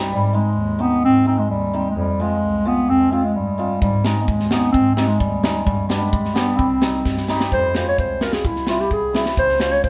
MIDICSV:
0, 0, Header, 1, 5, 480
1, 0, Start_track
1, 0, Tempo, 464037
1, 104, Time_signature, 2, 2, 24, 8
1, 10234, End_track
2, 0, Start_track
2, 0, Title_t, "Hammered dulcimer"
2, 0, Program_c, 0, 15
2, 0, Note_on_c, 0, 55, 79
2, 156, Note_off_c, 0, 55, 0
2, 340, Note_on_c, 0, 56, 63
2, 350, Note_on_c, 0, 60, 52
2, 356, Note_on_c, 0, 63, 61
2, 467, Note_off_c, 0, 60, 0
2, 470, Note_off_c, 0, 63, 0
2, 802, Note_off_c, 0, 56, 0
2, 814, Note_on_c, 0, 56, 61
2, 817, Note_on_c, 0, 60, 64
2, 826, Note_on_c, 0, 63, 64
2, 940, Note_off_c, 0, 60, 0
2, 945, Note_off_c, 0, 63, 0
2, 1281, Note_off_c, 0, 56, 0
2, 1292, Note_on_c, 0, 56, 61
2, 1298, Note_on_c, 0, 60, 54
2, 1311, Note_on_c, 0, 63, 66
2, 1420, Note_off_c, 0, 60, 0
2, 1427, Note_off_c, 0, 63, 0
2, 1782, Note_off_c, 0, 56, 0
2, 1795, Note_on_c, 0, 56, 65
2, 1798, Note_on_c, 0, 60, 62
2, 1806, Note_on_c, 0, 63, 60
2, 1910, Note_off_c, 0, 60, 0
2, 1914, Note_off_c, 0, 63, 0
2, 2074, Note_off_c, 0, 56, 0
2, 2273, Note_on_c, 0, 56, 67
2, 2278, Note_on_c, 0, 60, 56
2, 2287, Note_on_c, 0, 65, 62
2, 2389, Note_off_c, 0, 60, 0
2, 2394, Note_off_c, 0, 65, 0
2, 2730, Note_off_c, 0, 56, 0
2, 2742, Note_on_c, 0, 56, 67
2, 2746, Note_on_c, 0, 60, 59
2, 2754, Note_on_c, 0, 65, 65
2, 2863, Note_off_c, 0, 60, 0
2, 2867, Note_off_c, 0, 65, 0
2, 3204, Note_off_c, 0, 56, 0
2, 3216, Note_on_c, 0, 56, 64
2, 3224, Note_on_c, 0, 60, 54
2, 3232, Note_on_c, 0, 65, 76
2, 3342, Note_off_c, 0, 60, 0
2, 3346, Note_off_c, 0, 65, 0
2, 3688, Note_off_c, 0, 56, 0
2, 3700, Note_on_c, 0, 56, 58
2, 3712, Note_on_c, 0, 60, 57
2, 3717, Note_on_c, 0, 65, 74
2, 3826, Note_off_c, 0, 60, 0
2, 3828, Note_off_c, 0, 65, 0
2, 3991, Note_off_c, 0, 56, 0
2, 4184, Note_on_c, 0, 56, 62
2, 4188, Note_on_c, 0, 60, 57
2, 4200, Note_on_c, 0, 63, 76
2, 4304, Note_off_c, 0, 60, 0
2, 4309, Note_off_c, 0, 63, 0
2, 4659, Note_off_c, 0, 56, 0
2, 4672, Note_on_c, 0, 56, 60
2, 4682, Note_on_c, 0, 60, 60
2, 4686, Note_on_c, 0, 63, 70
2, 4790, Note_off_c, 0, 60, 0
2, 4792, Note_off_c, 0, 63, 0
2, 5130, Note_off_c, 0, 56, 0
2, 5142, Note_on_c, 0, 56, 60
2, 5143, Note_on_c, 0, 60, 48
2, 5151, Note_on_c, 0, 63, 73
2, 5260, Note_off_c, 0, 60, 0
2, 5265, Note_off_c, 0, 63, 0
2, 5606, Note_off_c, 0, 56, 0
2, 5618, Note_on_c, 0, 56, 61
2, 5627, Note_on_c, 0, 60, 55
2, 5635, Note_on_c, 0, 63, 73
2, 5742, Note_off_c, 0, 60, 0
2, 5746, Note_off_c, 0, 63, 0
2, 5909, Note_off_c, 0, 56, 0
2, 6093, Note_on_c, 0, 55, 67
2, 6099, Note_on_c, 0, 59, 57
2, 6110, Note_on_c, 0, 62, 78
2, 6218, Note_off_c, 0, 59, 0
2, 6224, Note_off_c, 0, 62, 0
2, 6550, Note_off_c, 0, 55, 0
2, 6563, Note_on_c, 0, 55, 52
2, 6577, Note_on_c, 0, 59, 57
2, 6581, Note_on_c, 0, 62, 75
2, 6697, Note_off_c, 0, 59, 0
2, 6699, Note_off_c, 0, 62, 0
2, 6869, Note_off_c, 0, 55, 0
2, 7044, Note_on_c, 0, 55, 62
2, 7058, Note_on_c, 0, 60, 47
2, 7065, Note_on_c, 0, 63, 66
2, 7178, Note_off_c, 0, 60, 0
2, 7181, Note_off_c, 0, 63, 0
2, 7522, Note_off_c, 0, 55, 0
2, 7534, Note_on_c, 0, 55, 80
2, 7540, Note_on_c, 0, 60, 63
2, 7547, Note_on_c, 0, 63, 82
2, 7659, Note_off_c, 0, 60, 0
2, 7662, Note_off_c, 0, 63, 0
2, 7830, Note_off_c, 0, 55, 0
2, 8012, Note_on_c, 0, 56, 56
2, 8023, Note_on_c, 0, 60, 56
2, 8027, Note_on_c, 0, 65, 66
2, 8141, Note_off_c, 0, 60, 0
2, 8143, Note_off_c, 0, 65, 0
2, 8477, Note_off_c, 0, 56, 0
2, 8489, Note_on_c, 0, 56, 56
2, 8498, Note_on_c, 0, 60, 55
2, 8506, Note_on_c, 0, 65, 60
2, 8619, Note_off_c, 0, 60, 0
2, 8623, Note_off_c, 0, 65, 0
2, 8791, Note_off_c, 0, 56, 0
2, 8970, Note_on_c, 0, 55, 61
2, 8980, Note_on_c, 0, 60, 55
2, 8987, Note_on_c, 0, 64, 67
2, 9100, Note_off_c, 0, 60, 0
2, 9104, Note_off_c, 0, 64, 0
2, 9431, Note_off_c, 0, 55, 0
2, 9443, Note_on_c, 0, 55, 54
2, 9449, Note_on_c, 0, 60, 55
2, 9459, Note_on_c, 0, 64, 66
2, 9575, Note_off_c, 0, 60, 0
2, 9580, Note_off_c, 0, 64, 0
2, 9753, Note_off_c, 0, 55, 0
2, 9926, Note_on_c, 0, 56, 52
2, 9934, Note_on_c, 0, 61, 58
2, 9942, Note_on_c, 0, 65, 66
2, 10058, Note_off_c, 0, 61, 0
2, 10062, Note_off_c, 0, 65, 0
2, 10234, Note_off_c, 0, 56, 0
2, 10234, End_track
3, 0, Start_track
3, 0, Title_t, "Clarinet"
3, 0, Program_c, 1, 71
3, 136, Note_on_c, 1, 55, 103
3, 363, Note_on_c, 1, 56, 96
3, 379, Note_off_c, 1, 55, 0
3, 838, Note_on_c, 1, 59, 95
3, 853, Note_off_c, 1, 56, 0
3, 1070, Note_off_c, 1, 59, 0
3, 1083, Note_on_c, 1, 60, 114
3, 1297, Note_off_c, 1, 60, 0
3, 1319, Note_on_c, 1, 60, 100
3, 1435, Note_on_c, 1, 56, 87
3, 1450, Note_off_c, 1, 60, 0
3, 1549, Note_off_c, 1, 56, 0
3, 1555, Note_on_c, 1, 55, 91
3, 1939, Note_off_c, 1, 55, 0
3, 1970, Note_on_c, 1, 56, 76
3, 2050, Note_on_c, 1, 55, 96
3, 2066, Note_off_c, 1, 56, 0
3, 2288, Note_on_c, 1, 56, 103
3, 2303, Note_off_c, 1, 55, 0
3, 2768, Note_on_c, 1, 59, 104
3, 2783, Note_off_c, 1, 56, 0
3, 2998, Note_on_c, 1, 60, 118
3, 3014, Note_off_c, 1, 59, 0
3, 3223, Note_off_c, 1, 60, 0
3, 3229, Note_on_c, 1, 60, 86
3, 3356, Note_on_c, 1, 56, 76
3, 3372, Note_off_c, 1, 60, 0
3, 3475, Note_on_c, 1, 55, 86
3, 3491, Note_off_c, 1, 56, 0
3, 3942, Note_off_c, 1, 55, 0
3, 3948, Note_on_c, 1, 55, 98
3, 4167, Note_off_c, 1, 55, 0
3, 4196, Note_on_c, 1, 56, 78
3, 4356, Note_off_c, 1, 56, 0
3, 4374, Note_on_c, 1, 59, 67
3, 4435, Note_on_c, 1, 56, 87
3, 4451, Note_off_c, 1, 59, 0
3, 4667, Note_on_c, 1, 59, 94
3, 4682, Note_off_c, 1, 56, 0
3, 4877, Note_off_c, 1, 59, 0
3, 4884, Note_on_c, 1, 60, 106
3, 5113, Note_off_c, 1, 60, 0
3, 5126, Note_on_c, 1, 60, 85
3, 5250, Note_on_c, 1, 56, 90
3, 5265, Note_off_c, 1, 60, 0
3, 5370, Note_on_c, 1, 55, 81
3, 5386, Note_off_c, 1, 56, 0
3, 5840, Note_off_c, 1, 55, 0
3, 5846, Note_on_c, 1, 55, 89
3, 6075, Note_off_c, 1, 55, 0
3, 6086, Note_on_c, 1, 56, 77
3, 6563, Note_on_c, 1, 59, 87
3, 6578, Note_off_c, 1, 56, 0
3, 6793, Note_on_c, 1, 60, 98
3, 6808, Note_off_c, 1, 59, 0
3, 7525, Note_off_c, 1, 60, 0
3, 7792, Note_on_c, 1, 72, 98
3, 8009, Note_off_c, 1, 72, 0
3, 8038, Note_on_c, 1, 72, 75
3, 8141, Note_off_c, 1, 72, 0
3, 8154, Note_on_c, 1, 73, 77
3, 8259, Note_off_c, 1, 73, 0
3, 8272, Note_on_c, 1, 72, 72
3, 8506, Note_on_c, 1, 70, 74
3, 8522, Note_off_c, 1, 72, 0
3, 8620, Note_on_c, 1, 68, 77
3, 8635, Note_off_c, 1, 70, 0
3, 8753, Note_on_c, 1, 64, 88
3, 8769, Note_off_c, 1, 68, 0
3, 8993, Note_on_c, 1, 65, 76
3, 9008, Note_off_c, 1, 64, 0
3, 9106, Note_on_c, 1, 67, 78
3, 9121, Note_off_c, 1, 65, 0
3, 9223, Note_off_c, 1, 67, 0
3, 9236, Note_on_c, 1, 68, 86
3, 9564, Note_off_c, 1, 68, 0
3, 9710, Note_on_c, 1, 72, 106
3, 9930, Note_off_c, 1, 72, 0
3, 9948, Note_on_c, 1, 72, 90
3, 10056, Note_on_c, 1, 73, 81
3, 10071, Note_off_c, 1, 72, 0
3, 10172, Note_off_c, 1, 73, 0
3, 10178, Note_on_c, 1, 72, 81
3, 10234, Note_off_c, 1, 72, 0
3, 10234, End_track
4, 0, Start_track
4, 0, Title_t, "Double bass"
4, 0, Program_c, 2, 43
4, 100, Note_on_c, 2, 44, 112
4, 389, Note_off_c, 2, 44, 0
4, 587, Note_on_c, 2, 39, 90
4, 874, Note_off_c, 2, 39, 0
4, 1068, Note_on_c, 2, 44, 104
4, 1354, Note_off_c, 2, 44, 0
4, 1550, Note_on_c, 2, 39, 83
4, 1835, Note_off_c, 2, 39, 0
4, 2024, Note_on_c, 2, 41, 112
4, 2311, Note_off_c, 2, 41, 0
4, 2509, Note_on_c, 2, 36, 93
4, 2794, Note_off_c, 2, 36, 0
4, 2982, Note_on_c, 2, 41, 91
4, 3269, Note_off_c, 2, 41, 0
4, 3457, Note_on_c, 2, 43, 78
4, 3746, Note_off_c, 2, 43, 0
4, 3946, Note_on_c, 2, 44, 108
4, 4232, Note_off_c, 2, 44, 0
4, 4426, Note_on_c, 2, 39, 73
4, 4711, Note_off_c, 2, 39, 0
4, 4902, Note_on_c, 2, 44, 105
4, 5189, Note_off_c, 2, 44, 0
4, 5382, Note_on_c, 2, 39, 85
4, 5669, Note_off_c, 2, 39, 0
4, 5861, Note_on_c, 2, 43, 100
4, 6148, Note_off_c, 2, 43, 0
4, 6342, Note_on_c, 2, 43, 83
4, 6629, Note_off_c, 2, 43, 0
4, 6817, Note_on_c, 2, 36, 98
4, 7105, Note_off_c, 2, 36, 0
4, 7298, Note_on_c, 2, 43, 88
4, 7586, Note_off_c, 2, 43, 0
4, 7782, Note_on_c, 2, 41, 103
4, 8069, Note_off_c, 2, 41, 0
4, 8265, Note_on_c, 2, 36, 77
4, 8552, Note_off_c, 2, 36, 0
4, 8738, Note_on_c, 2, 36, 91
4, 9027, Note_off_c, 2, 36, 0
4, 9216, Note_on_c, 2, 36, 77
4, 9506, Note_off_c, 2, 36, 0
4, 9696, Note_on_c, 2, 37, 99
4, 9986, Note_off_c, 2, 37, 0
4, 10181, Note_on_c, 2, 41, 73
4, 10234, Note_off_c, 2, 41, 0
4, 10234, End_track
5, 0, Start_track
5, 0, Title_t, "Drums"
5, 3949, Note_on_c, 9, 36, 93
5, 4053, Note_off_c, 9, 36, 0
5, 4184, Note_on_c, 9, 38, 78
5, 4288, Note_off_c, 9, 38, 0
5, 4428, Note_on_c, 9, 36, 84
5, 4531, Note_off_c, 9, 36, 0
5, 4550, Note_on_c, 9, 38, 28
5, 4653, Note_off_c, 9, 38, 0
5, 4663, Note_on_c, 9, 38, 83
5, 4767, Note_off_c, 9, 38, 0
5, 4905, Note_on_c, 9, 36, 81
5, 5009, Note_off_c, 9, 36, 0
5, 5142, Note_on_c, 9, 38, 81
5, 5246, Note_off_c, 9, 38, 0
5, 5383, Note_on_c, 9, 36, 78
5, 5486, Note_off_c, 9, 36, 0
5, 5624, Note_on_c, 9, 38, 93
5, 5727, Note_off_c, 9, 38, 0
5, 5862, Note_on_c, 9, 36, 89
5, 5965, Note_off_c, 9, 36, 0
5, 6101, Note_on_c, 9, 38, 75
5, 6204, Note_off_c, 9, 38, 0
5, 6340, Note_on_c, 9, 36, 81
5, 6444, Note_off_c, 9, 36, 0
5, 6465, Note_on_c, 9, 38, 25
5, 6568, Note_off_c, 9, 38, 0
5, 6577, Note_on_c, 9, 38, 90
5, 6681, Note_off_c, 9, 38, 0
5, 6816, Note_on_c, 9, 36, 83
5, 6920, Note_off_c, 9, 36, 0
5, 7052, Note_on_c, 9, 38, 87
5, 7156, Note_off_c, 9, 38, 0
5, 7297, Note_on_c, 9, 36, 73
5, 7298, Note_on_c, 9, 38, 50
5, 7401, Note_off_c, 9, 36, 0
5, 7401, Note_off_c, 9, 38, 0
5, 7421, Note_on_c, 9, 38, 46
5, 7524, Note_off_c, 9, 38, 0
5, 7536, Note_on_c, 9, 38, 67
5, 7639, Note_off_c, 9, 38, 0
5, 7659, Note_on_c, 9, 38, 82
5, 7762, Note_off_c, 9, 38, 0
5, 7779, Note_on_c, 9, 36, 72
5, 7882, Note_off_c, 9, 36, 0
5, 8013, Note_on_c, 9, 38, 77
5, 8117, Note_off_c, 9, 38, 0
5, 8259, Note_on_c, 9, 36, 74
5, 8362, Note_off_c, 9, 36, 0
5, 8494, Note_on_c, 9, 38, 77
5, 8597, Note_off_c, 9, 38, 0
5, 8614, Note_on_c, 9, 38, 72
5, 8717, Note_off_c, 9, 38, 0
5, 8737, Note_on_c, 9, 36, 78
5, 8840, Note_off_c, 9, 36, 0
5, 8854, Note_on_c, 9, 38, 25
5, 8957, Note_off_c, 9, 38, 0
5, 8965, Note_on_c, 9, 38, 69
5, 9068, Note_off_c, 9, 38, 0
5, 9090, Note_on_c, 9, 38, 20
5, 9193, Note_off_c, 9, 38, 0
5, 9215, Note_on_c, 9, 36, 68
5, 9319, Note_off_c, 9, 36, 0
5, 9461, Note_on_c, 9, 38, 82
5, 9565, Note_off_c, 9, 38, 0
5, 9575, Note_on_c, 9, 38, 63
5, 9678, Note_off_c, 9, 38, 0
5, 9696, Note_on_c, 9, 36, 81
5, 9800, Note_off_c, 9, 36, 0
5, 9819, Note_on_c, 9, 38, 23
5, 9922, Note_off_c, 9, 38, 0
5, 9928, Note_on_c, 9, 38, 72
5, 10032, Note_off_c, 9, 38, 0
5, 10055, Note_on_c, 9, 38, 18
5, 10159, Note_off_c, 9, 38, 0
5, 10178, Note_on_c, 9, 36, 70
5, 10234, Note_off_c, 9, 36, 0
5, 10234, End_track
0, 0, End_of_file